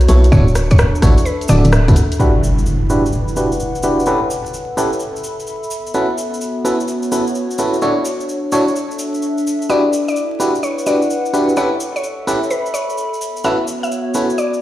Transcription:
Already playing: B3 F#4 C#5
0.01 closed hi-hat, cabasa
0.08 B1 B3 E4 F#4 A4 C#5, open hi-hat, cabasa
0.24 closed hi-hat, cabasa
0.32 D1 D4 E4 F#4 A4 C#5, kick, cabasa
0.48 cabasa
0.52 A4, cross-stick, open hi-hat, cabasa
0.70 C#5, kick, closed hi-hat, cabasa
0.78 cross-stick, cabasa
0.95 cabasa
1.02 A1 D4 E4 F#4 A4 C#5, kick, cross-stick, open hi-hat, cabasa
1.18 E5, open hi-hat, cabasa
1.25 B4, cabasa
1.41 closed hi-hat, cabasa
1.48 D1 D4 E4 F#4 A4 D5, cross-stick, open hi-hat, cabasa
1.65 D1, closed hi-hat, cabasa
1.72 cross-stick, cabasa
1.88 F#1 D4 E4 F#4 A4 B4, kick, closed hi-hat, cabasa
1.96 open hi-hat, cabasa
2.12 closed hi-hat, cabasa
2.19 D4 E4 F#4 G4 B4, impact, cabasa
2.44 cabasa
2.58 cabasa
2.66 cabasa
2.72 B4
2.90 D4 E4 F#4 G4 B4, cabasa
3.06 F#5, cabasa
3.12 cabasa
3.28 cabasa
3.36 D4 E4 F#4 G4 B4, cabasa
3.52 cabasa
3.60 cabasa
3.75 cabasa
3.83 D4 E4 F#4 G4 B4, cabasa
4.00 cabasa
4.06 C#4 E4 G4 A4 B4, cabasa
4.30 cabasa
4.46 cabasa
4.54 cabasa
4.59 E5
4.74 C#4 E4 G4 A4 B4 B5, cabasa
4.93 cabasa
5.00 cabasa
5.16 cabasa
5.24 cabasa
5.40 cabasa
5.47 cabasa
5.63 cabasa
5.71 B3, cabasa
5.86 cabasa
5.94 C#4 E4 F#4 A4 B4, cabasa
6.11 F#4
6.18 cabasa
6.34 cabasa
6.41 cabasa
6.65 C#4 E4 F#4 A4 B4 C#5, cabasa
6.80 cabasa
6.88 cabasa
7.03 cabasa
7.12 C#4 E4 F#4 A4 B4, cabasa
7.27 cabasa
7.35 cabasa
7.51 cabasa
7.58 C#4 E4 F#4 A4 B4, cabasa
7.74 cabasa
7.82 D4 E4 F#4 A4 C#5, cabasa
8.05 cabasa
8.11 A4
8.20 cabasa
8.29 cabasa
8.52 D4 E4 F#4 A4 C#5, cabasa
8.68 E5, cabasa
8.76 cabasa
8.91 cabasa
8.99 cabasa
9.14 cabasa
9.22 cabasa
9.38 cabasa
9.47 cabasa
9.62 cabasa
9.69 D4 E4 F#4 G4 B4 D5, cabasa
9.93 cabasa
10.08 D5, cabasa
10.16 cabasa
10.40 D4 E4 F#4 G4 B4, cabasa
10.48 B4
10.55 F#5, cabasa
10.63 C#5, cabasa
10.78 cabasa
10.86 D4 E4 F#4 G4 B4 D5, cabasa
11.02 cabasa
11.10 cabasa
11.26 cabasa
11.33 D4 E4 F#4 G4 B4, cabasa
11.49 cabasa
11.56 C#4 E4 G4 A4 B4 C#5, cabasa
11.80 E5, cabasa
11.96 C#5, cabasa
12.04 cabasa
12.14 B5
12.27 C#4 E4 G4 A4 B4, cabasa
12.43 cabasa
12.50 B4, cabasa
12.66 cabasa
12.74 C#5, cabasa
12.90 cabasa
12.97 cabasa
13.14 cabasa
13.21 B3, cabasa
13.36 F#4, cabasa
13.44 C#4 E4 F#4 A4 B4 E5, cabasa
13.55 C#5
13.67 cabasa
13.83 E5, cabasa
13.92 cabasa
14.14 C#4 E4 F#4 A4 B4, cabasa
14.30 cabasa
14.38 D5, cabasa
14.54 cabasa

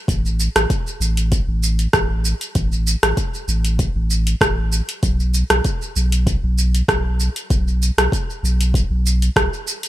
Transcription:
0.08 A1, kick, closed hi-hat, shaker
0.26 shaker
0.40 shaker
0.56 A1, cross-stick, closed hi-hat, shaker
0.70 kick, closed hi-hat, shaker
0.87 shaker
1.00 A1, shaker
1.17 closed hi-hat, shaker
1.32 kick, closed hi-hat, shaker
1.48 A1
1.63 shaker
1.79 closed hi-hat, shaker
1.93 A1, kick, cross-stick, closed hi-hat, shaker
2.25 shaker
2.41 closed hi-hat, shaker
2.55 A1, kick, closed hi-hat, shaker
2.72 shaker
2.87 shaker
3.03 A1, cross-stick, closed hi-hat, shaker
3.17 kick, closed hi-hat, shaker
3.34 shaker
3.48 A1, shaker
3.65 closed hi-hat, shaker
3.79 kick, closed hi-hat, shaker
3.95 A1
4.10 shaker
4.27 closed hi-hat, shaker
4.41 A1, kick, cross-stick, closed hi-hat, shaker
4.72 shaker
4.89 closed hi-hat, shaker
5.03 B1, kick, closed hi-hat, shaker
5.20 shaker
5.34 shaker
5.50 B1, cross-stick, closed hi-hat, shaker
5.64 kick, closed hi-hat, shaker
5.82 shaker
5.96 B1, shaker
6.12 closed hi-hat, shaker
6.27 kick, closed hi-hat, shaker
6.43 B1
6.58 shaker
6.75 closed hi-hat, shaker
6.88 B1, kick, cross-stick, closed hi-hat, shaker
7.20 shaker
7.36 closed hi-hat, shaker
7.50 B1, kick, closed hi-hat, shaker
7.68 shaker
7.82 shaker
7.98 B1, cross-stick, closed hi-hat, shaker
8.12 kick, closed hi-hat, shaker
8.30 shaker
8.43 B1, shaker
8.61 closed hi-hat, shaker
8.74 kick, closed hi-hat, shaker
8.90 B1
9.06 shaker
9.22 closed hi-hat, shaker
9.36 B1, kick, cross-stick, closed hi-hat, shaker
9.53 shaker
9.67 shaker
9.83 closed hi-hat, shaker

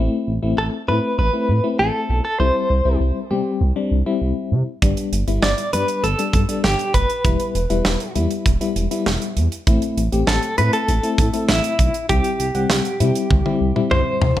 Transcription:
Already playing: A3 C4 E4
0.28 A1
0.43 A1 A3 C4 E4
0.58 A1 A4
0.88 A2 A3 C4 E4 B4
1.18 A1 B4
1.33 A3 C4 E4
1.49 A2
1.64 A3 C4 E4
1.79 A1 A4
2.09 B1
2.25 A4
2.40 C2 G3 C4 E4 C5
2.70 C2
2.85 C2 G3 C4 E4
3.00 C2
3.31 C3 G3 C4 G4
3.61 C2
3.76 G3 C4 D4
3.91 C2
4.06 G3 C4 E4
4.21 C2
4.52 C3
4.82 G1 G3 B3 D4, kick, closed hi-hat
4.97 closed hi-hat
5.12 G1, closed hi-hat
5.28 G1 G3 B3 E4, closed hi-hat
5.42 G1 D5, snare
5.58 closed hi-hat
5.73 G2 G3 B3 D4 B4, closed hi-hat
5.88 closed hi-hat
6.03 G1 A4, closed hi-hat
6.19 G3 B3 D4, closed hi-hat
6.33 G2, kick, closed hi-hat
6.49 G3 B3 D4, closed hi-hat
6.64 G1 G4, snare
6.79 closed hi-hat
6.94 F#1 B4, kick, closed hi-hat
7.10 closed hi-hat
7.25 E1 G3 B3 E4, kick, closed hi-hat
7.40 closed hi-hat
7.55 E1, closed hi-hat
7.70 E1 G3 B3 E4, closed hi-hat
7.85 E1, snare
8.00 closed hi-hat
8.15 E2 G3 B3 E4, closed hi-hat
8.31 closed hi-hat
8.46 E1, kick, closed hi-hat
8.61 G3 B3 E4, closed hi-hat
8.76 E1, closed hi-hat
8.91 G3 B3 E4, closed hi-hat
9.06 E1, snare
9.22 closed hi-hat
9.37 E2, closed hi-hat
9.52 closed hi-hat
9.67 A1 A3 C4 E4, kick, closed hi-hat
9.82 closed hi-hat
9.97 A1, closed hi-hat
10.12 A1 A3 C4 G4, closed hi-hat
10.27 A1 A4, snare
10.43 closed hi-hat
10.58 A2 A3 C4 E4 B4, closed hi-hat
10.73 A4, closed hi-hat
10.88 A1, closed hi-hat
11.03 A3 C4 E4, closed hi-hat
11.18 A2, kick, closed hi-hat
11.33 A3 C4 E4, closed hi-hat
11.49 A1 E4, snare
11.64 closed hi-hat
11.79 B1, kick, closed hi-hat
11.94 closed hi-hat
12.09 C2 G3 C4 E4 G4, kick, closed hi-hat
12.24 closed hi-hat
12.40 C2, closed hi-hat
12.55 C2 G3 C4 F#5, closed hi-hat
12.70 C2, snare
12.85 closed hi-hat
13.00 C3 G3 C4 E4, closed hi-hat
13.15 closed hi-hat
13.31 C2, kick, high tom
13.46 G3 C4 E4, high tom
13.61 C2
13.76 G3 C4 E4, mid tom
13.91 C2 C5, mid tom
14.21 C3, floor tom
14.37 floor tom

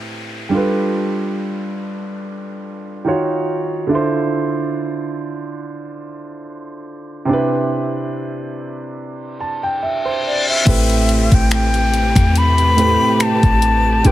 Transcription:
Already playing: A2 A3 C4 G4 B4, downlifter
0.49 G3 D4
0.53 F4 A4 B4
3.04 D#3 D#4 F4 F#4
3.08 C#5
3.87 D3 D4
3.91 E4 F4 C5
7.25 C3 C4 D4
7.31 E4 B4
8.98 reverse cymbal
9.40 A5
9.63 G5
9.82 E5
10.05 C5
10.27 D5
10.49 E5
10.65 A1 A2 C3 A3 C4 G4 B4, kick, closed hi-hat, crash, downlifter
10.90 closed hi-hat
11.09 closed hi-hat
11.32 A1 G5, kick, closed hi-hat
11.51 G5, finger snap, closed hi-hat
11.74 closed hi-hat
11.94 closed hi-hat
12.16 E2, finger snap, kick, closed hi-hat
12.36 B5, closed hi-hat
12.58 closed hi-hat
12.76 A2 A3 C4 G4 B4, closed hi-hat
13.20 A5, finger snap, closed hi-hat
13.43 A1, kick, closed hi-hat
13.62 closed hi-hat
14.03 G1 F3 G3 D4 F4 A4 B4 G5, closed hi-hat

